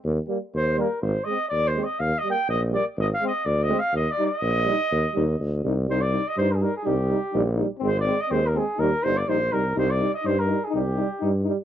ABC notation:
X:1
M:2/4
L:1/16
Q:"Swing 16ths" 1/4=124
K:Eb
V:1 name="Flugelhorn"
z4 c2 B2 | c2 e2 (3d2 c2 e2 | (3f2 e2 g2 e2 d2 | (3e2 f2 e2 (3d2 e2 f2 |
(3e2 d2 e2- e4- | e4 z4 | [K:Cm] c d2 e c B/2 A/2 B A | G6 z2 |
c d2 e c B A2 | B2 c d c2 B2 | c d2 e c B2 A | G6 z2 |]
V:2 name="Trombone"
z2 B,2 z2 B,2 | z2 C2 z2 C2 | z2 B,2 z2 B,2 | z2 C2 z2 C2 |
z2 E2 z2 E2 | z2 E2 z2 E2 | [K:Cm] E2 E2 E2 E2 | E2 E2 E2 E2 |
C2 C2 C2 C2 | E2 E2 E2 E2 | E2 E2 E2 E2 | E2 E2 E2 E2 |]
V:3 name="Euphonium" clef=bass
z2 G,2 z2 G,2 | z2 A,2 z2 A,2 | z2 G,2 z2 G,2 | z2 A,2 z2 A,2 |
z2 G,2 z2 G,2 | z2 G,2 z2 G,2 | [K:Cm] G,2 G,2 G,2 G,2 | G,2 G,2 G,2 G,2 |
A,2 A,2 A,2 A,2 | G,2 G,2 G,2 G,2 | G,2 G,2 G,2 G,2 | G,2 G,2 G,2 G,2 |]
V:4 name="Tuba" clef=bass
E,,2 z2 E,,4 | A,,,2 z2 E,,4 | E,,2 z2 B,,,4 | A,,,2 z2 D,,4 |
E,,2 z2 B,,,4 | E,,2 E,,2 D,,2 C,,2 | [K:Cm] C,,4 G,,4 | C,,4 B,,,4 |
A,,,4 E,,4 | E,,2 G,,,2 B,,,2 C,,2 | C,,4 G,,4 | C,,4 G,,4 |]